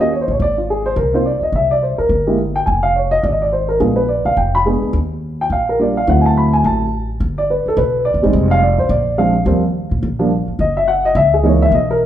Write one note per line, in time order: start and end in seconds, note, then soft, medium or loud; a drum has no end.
0.00 0.25 D#2 medium
0.00 0.11 D#5 medium
0.13 0.21 C#5 medium
0.21 0.30 C5 medium
0.28 0.38 A1 medium
0.28 0.40 C#5 medium
0.40 0.94 G#1 medium
0.40 0.57 D5 medium
0.58 0.68 F4 soft
0.70 0.86 G#4 medium
0.86 0.96 C5 medium
0.96 1.39 C2 medium
0.96 1.13 A#4 medium
1.13 1.23 A#3 soft
1.13 1.24 C4 soft
1.13 1.24 D#4 medium
1.13 1.24 F4 medium
1.13 1.25 C5 medium
1.26 1.37 D5 medium
1.38 1.40 D5 soft
1.38 muted upright bass stroke soft
1.43 1.53 D#5 medium
1.52 1.95 C2 medium
1.52 1.71 E5 medium
1.71 1.82 D5 medium
1.83 1.99 C5 soft
1.98 2.35 A#4 medium
1.98 muted upright bass stroke soft
2.09 2.63 G1 medium
2.27 2.37 G#3 medium
2.27 2.37 A#3 medium
2.27 2.37 E4 soft
2.27 2.37 G4 medium
2.56 2.66 G5 medium
2.66 3.21 F1 medium
2.66 2.83 G#5 medium
2.83 2.94 F5 medium
2.96 3.12 C#5 medium
3.11 3.23 D#5 medium
3.23 3.77 G#1 medium
3.23 3.32 D5 medium
3.32 3.42 D#5 medium
3.42 3.51 D5 medium
3.53 3.69 C5 medium
3.69 3.80 A#4 medium
3.80 4.23 A#1 medium
3.80 3.96 G#3 soft
3.80 3.96 B3 soft
3.80 3.96 D4 soft
3.80 3.96 F4 medium
3.80 3.97 G#4 medium
3.96 4.08 B4 medium
4.09 4.25 D5 medium
4.25 4.36 B1 medium
4.25 4.37 F5 medium
4.37 4.79 F1 medium
4.37 4.54 G5 medium
4.55 4.61 B5 medium
4.66 4.94 G#3 soft
4.66 4.94 B3 soft
4.66 4.94 D4 soft
4.66 4.94 G#4 medium
4.82 muted upright bass stroke soft
4.93 5.47 D#2 medium
5.41 5.51 G5 medium
5.50 6.04 A#1 medium
5.50 5.68 F5 medium
5.69 5.79 A#4 medium
5.79 5.94 G3 medium
5.79 5.95 A#3 soft
5.79 5.95 D4 soft
5.79 5.95 F4 medium
5.79 5.97 D5 medium
5.97 6.08 F5 medium
6.07 6.61 D2 medium
6.07 6.85 F#3 medium
6.07 6.86 A3 soft
6.07 6.86 C4 soft
6.07 6.86 E4 medium
6.07 6.25 F#5 medium
6.21 6.23 G#5 medium
6.26 6.36 A5 medium
6.37 6.53 B5 medium
6.53 6.64 G#5 medium
6.64 7.18 A1 medium
6.64 7.07 A5 medium
7.20 7.63 G1 medium
7.38 7.49 D5 medium
7.50 7.66 B4 medium
7.66 7.78 A4 medium
7.66 muted upright bass stroke soft
7.77 8.12 B1 medium
7.77 8.04 B4 medium
8.05 8.31 D5 medium
8.14 8.23 A1 medium
8.22 8.33 F#1 medium
8.22 8.59 G3 medium
8.22 8.60 G#3 medium
8.22 8.60 C4 medium
8.22 8.60 D#4 medium
8.33 8.75 F1 medium
8.51 8.62 F5 medium
8.63 8.79 D5 medium
8.78 8.89 A1 medium
8.78 8.90 C5 medium
8.89 9.43 A#1 medium
8.89 9.16 D5 medium
9.18 9.33 F3 medium
9.18 9.33 G#3 medium
9.18 9.34 C4 soft
9.18 9.34 D4 medium
9.18 9.44 F5 medium
9.46 9.88 D#2 medium
9.46 9.61 F3 medium
9.46 9.61 G3 medium
9.46 9.62 A#3 medium
9.46 9.62 C4 medium
9.91 10.02 A#2 medium
10.03 10.45 A#1 medium
10.19 10.30 F3 medium
10.19 10.29 G3 medium
10.19 10.30 A#3 medium
10.19 10.30 D4 medium
10.48 muted upright bass stroke soft
10.59 11.13 F#1 medium
10.59 10.76 D#5 medium
10.77 10.87 E5 medium
10.88 11.04 F#5 medium
11.05 11.16 D#5 medium
11.15 11.69 C#2 medium
11.15 11.33 E5 medium
11.34 11.44 G#4 medium
11.43 11.72 E3 medium
11.43 11.72 G#3 medium
11.43 11.72 A#3 medium
11.43 11.72 D#4 medium
11.43 11.62 C#5 medium
11.62 11.72 E5 medium
11.72 12.06 B1 medium
11.72 11.90 D#5 medium
11.91 11.97 A#4 medium